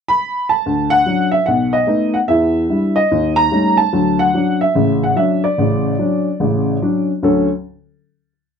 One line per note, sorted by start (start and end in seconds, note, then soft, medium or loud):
0.08 0.51 B5 loud
0.49 0.92 A5 medium
0.66 1.01 D2 medium
0.90 1.29 F#5 loud
1.06 1.34 F#3 soft
1.06 1.34 C#4 soft
1.06 1.34 D4 medium
1.31 1.46 E5 medium
1.46 1.83 B1 medium
1.46 1.74 F#5 medium
1.73 2.15 D#5 medium
1.87 2.16 A3 soft
1.87 2.16 B3 soft
1.87 2.16 D#4 medium
2.14 2.19 F#5 medium
2.28 2.64 E2 medium
2.28 2.64 E3 medium
2.28 2.92 E5 medium
2.69 2.98 G3 medium
2.69 2.98 D4 soft
2.69 2.98 E4 medium
2.96 3.38 D#5 medium
3.11 3.47 D#2 medium
3.36 3.75 A#5 loud
3.51 3.80 G3 medium
3.51 3.80 A3 soft
3.51 3.80 C#4 soft
3.51 3.81 D#4 medium
3.77 4.20 A5 medium
3.93 4.28 D2 medium
3.93 4.28 F#3 medium
4.19 4.58 F#5 loud
4.34 4.62 F#3 soft
4.34 4.63 C#4 soft
4.34 4.63 D4 medium
4.61 5.03 E5 medium
4.75 5.11 A1 medium
4.75 5.11 C#3 medium
5.03 5.17 F#5 medium
5.16 5.45 F#3 medium
5.16 5.45 C#4 soft
5.16 5.45 D4 medium
5.16 5.42 E5 medium
5.44 7.04 D5 medium
5.58 5.94 A1 medium
5.58 5.93 C#3 medium
5.99 6.27 F#3 soft
5.99 6.27 C#4 soft
5.99 6.28 D4 medium
6.40 6.76 A1 medium
6.40 6.76 C#3 medium
6.82 7.10 F#3 soft
6.82 7.10 C#4 soft
6.82 7.10 D4 medium
7.23 7.47 D2 medium
7.23 7.47 D3 medium
7.23 7.47 F#3 medium
7.23 7.47 C#4 medium
7.23 7.49 A4 medium